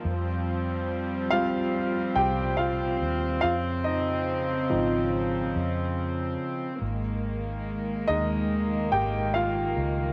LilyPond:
<<
  \new Staff \with { instrumentName = "Grand piano" } { \time 4/4 \key aes \major \tempo 4 = 71 << { r4. f''4 <g' g''>8 <f' f''>4 | <f' f''>8 <ees' ees''>2. r8 | r4. ees''4 <g' g''>8 <f' f''>4 | } \\ { r4. <g c' f'>2~ <g c' f'>8 | r4. <f c' ees'>8 r2 | r4. <aes bes ees'>2~ <aes bes ees'>8 | } >> }
  \new Staff \with { instrumentName = "String section" } { \clef bass \time 4/4 \key aes \major << { c'1~ | c'1 | bes1 | } \\ { <f g>1 | <des f>1 | <ees aes>1 | } >> }
  \new Staff \with { instrumentName = "Fingered electric bass" } { \clef bass \time 4/4 \key aes \major f,4. c,4 c,4 ees,8 | f,4. aes,,4 f,4 r8 | aes,,4. ees,4 aes,,4 des,8 | }
>>